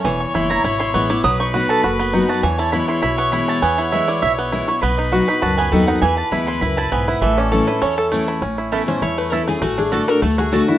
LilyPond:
<<
  \new Staff \with { instrumentName = "Mandolin" } { \time 4/4 \key a \major \tempo 4 = 201 gis''8 cis'''8 c'''8 bes''8 b''8 c'''8 cis'''8 d'''8 | dis'''8 cis'''8 b''8 a''8 b''4. a''8 | gis''8 a''8 b''8 c'''8 b''8 cis'''8 b''8 a''8 | gis''8 fis''8 e''8 d''8 e''8 r4 cis'''8 |
b''8 dis''8 fis''8 b''8 a''8 gis''8 g''8 fis''8 | gis''8 a''8 b''8 c'''8 b''8 a''8 gis''8 fis''8 | e''8 d''8 cis''8 b'8 cis''8 a'8 r4 | r4 <cis' a' e'' b''>8 r4. <cis' a' e'' b''>8 r8 |
r4 <a fis' d'' a''>8 r4. <a fis' d'' a''>8 r8 | }
  \new Staff \with { instrumentName = "Fiddle" } { \time 4/4 \key a \major cis''1 | b'1 | cis''1~ | cis''1 |
b'1 | b'1 | a'2.~ a'8 r8 | r1 |
r1 | }
  \new Staff \with { instrumentName = "Steel-string acoustic guitar" } { \time 4/4 \key a \major r1 | r1 | r1 | r1 |
r1 | r1 | r1 | r4. c''8 cis''8 b'8 a'8 gis'8 |
fis'8 gis'8 a'8 bes'8 a'8 gis'8 fis'8 e'8 | }
  \new Staff \with { instrumentName = "Five-string banjo" } { \time 4/4 \key a \major e4 e'8 e'8 e'8 e'8 b8 e'8 | fis8 dis'8 fis'8 a'8 fis'8 b8 dis'8 fis'8 | e8 e'8 e'8 e'8 e'8 b8 e'8 e'8 | b8 e'8 e'8 e'8 e'8 b8 e'8 e'8 |
b8 dis'8 fis'8 dis'8 fis'8 b8 a'8 dis'8 | e4 e'8 e'8 e'8 e'8 b8 e'8 | e8 cis'8 a'8 e'8 cis'8 a'8 a8 e'8 | cis'8 e'8 a8 cis'8 e'8 a8 e'8 a8 |
a8 d'8 fis'8 a'8 a8 fis'8 a'8 fis'8 | }
  \new Staff \with { instrumentName = "Steel-string acoustic guitar" } { \time 4/4 \key a \major << { r4 <e gis b e'>8 <b e'>8 r4 <e gis b e'>8 <b e'>8 | r4 <fis b dis' fis'>4 r4 <fis b dis' fis'>4 | r4 <e gis b e'>4 r4 <e gis b e'>4 | r4 <e gis b e'>4 r4 <e gis b e'>8 <b e'>8 |
r4 <fis b dis' fis'>8 <dis' fis'>8 r4 <fis b dis' fis'>4 | r4 <e gis b e'>4 r2 | r4 <e a cis' e'>8 <cis' e'>8 r4 <e a cis' e'>4 | r4 <e b cis' e'>4 r4 <e b cis' e'>8 <cis' e'>8 |
r4 <d a d' fis'>8 <d' fis'>8 r4 <d a d' fis'>8 <d' fis'>8 | } \\ { e,2 b,2 | b,2 fis,2 | e,2 b,2 | e,2 b,2 |
b,2 fis,2 | e,2 fis,4 gis,4 | a,2 e,2 | a,2 e,2 |
a,2 a2 | } >> }
  \new Staff \with { instrumentName = "Upright bass" } { \clef bass \time 4/4 \key a \major e,,4 fis,,4 gis,,4 a,,4 | b,,2 fis,,2 | e,2 b,,2 | e,2 b,,2 |
b,,2 cis,4 dis,4 | e,4 d,4 cis,4 b,,4 | a,,2 e,2 | a,,2 e,2 |
a,,2 d,2 | }
>>